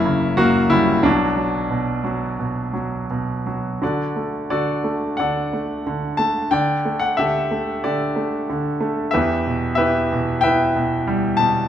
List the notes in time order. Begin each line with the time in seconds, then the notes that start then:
Already playing: F#1 F#2 A#3 E4
0.06 C#3
0.37 F#2 A#3 F#4
0.69 C#3 G3 E4
1.03 B1 B2 F#3 D4
1.37 F#3
1.70 B2
2.04 F#3
2.39 B2
2.73 F#3
3.10 B2
3.46 F#3
3.82 D3 F#4 A4 D5
4.16 A3
4.50 D3 F#4 A4 D5
4.84 A3
5.17 D3 A4 D5 F#5
5.53 A3
5.87 D3
6.17 A3 A5
6.51 D3 D5 G5
6.85 A3
6.99 F#5
7.17 D3 G4 A4 E5
7.51 A3
7.84 D3 G4 A4 D5
8.16 A3
8.50 D3
8.80 A3
9.11 E2 G4 B4 E5
9.47 B2
9.75 E3 G4 B4 E5
10.12 B2
10.41 E3 B4 E5 G5
10.76 B2
11.07 G3
11.37 B2 A5